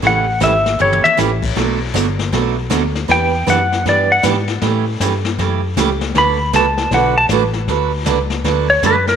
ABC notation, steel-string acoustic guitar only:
X:1
M:4/4
L:1/16
Q:"Swing" 1/4=157
K:D
V:1 name="Steel-string acoustic guitar"
[C,E,A,CG]2 z2 [C,E,A,CG] z3 [C,E,A,CG]2 z2 [C,E,A,CG] z3 | [B,,F,A,DF]2 z2 [B,,F,A,DF] z3 [B,,F,A,DF]2 z2 [B,,F,A,DF] z3 | [E,B,DG]2 z2 [E,B,DG] z3 [E,B,DG]2 z2 [E,B,DG] z3 | [C,E,A,CG]2 z2 [C,E,A,CG] z3 [C,E,A,CG]2 z2 [C,E,A,CG] z3 |
[D,F,A,DFB]2 z2 [D,F,A,DFB] z3 [D,F,A,DFB]2 z2 [D,F,A,DFB] z3 | [D,F,A,DFB]2 z2 [D,F,A,DFB] z3 [D,F,A,DFB]2 z2 [D,F,A,DFB] z3 |]